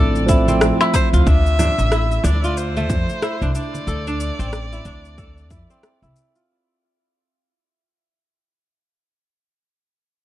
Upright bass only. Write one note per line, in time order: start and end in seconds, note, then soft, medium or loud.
0.00 0.70 A1 medium
1.13 1.22 D2 medium
1.27 1.68 D2 medium
1.78 2.17 A1 medium
2.24 2.90 D2 medium
2.90 3.03 F2 medium
3.42 3.50 C2 medium
3.87 4.29 D2 medium
4.39 4.78 A1 medium
4.85 5.51 D2 medium
5.51 5.63 F2 medium
6.02 6.11 C2 medium